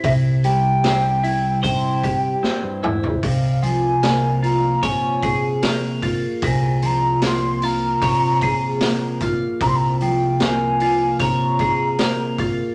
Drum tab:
HH |o-o-o-o-o-o-----|o-o-o-o-o-o-o-o-|o-o-o-o-o-o-o-o-|o-o-o-o-o-o-o-o-|
SD |----o-------o---|----o-------o---|----o-------o---|----o-------o---|
T2 |--------------o-|----------------|----------------|----------------|
FT |---------------o|----------------|----------------|----------------|
BD |o-------o-o-----|o-------o-o---o-|o-------o-o---o-|o-------o-o---o-|